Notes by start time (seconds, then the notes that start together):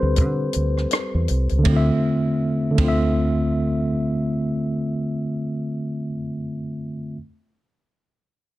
Already playing: G3 C4 G4 A4 B4 C5
0.03 D2
0.16 D3, kick, closed hi-hat
0.53 D2, closed hi-hat
0.77 cross-stick
0.91 cross-stick, closed hi-hat
1.15 E2
1.28 C2, closed hi-hat
1.49 C#2, closed hi-hat
1.59 D3
1.63 D2 A3, kick, ride
1.68 C4
1.72 F4
1.77 E5
2.71 D3
2.75 A3, kick, ride
2.80 D2 C4
2.84 F4
2.88 E5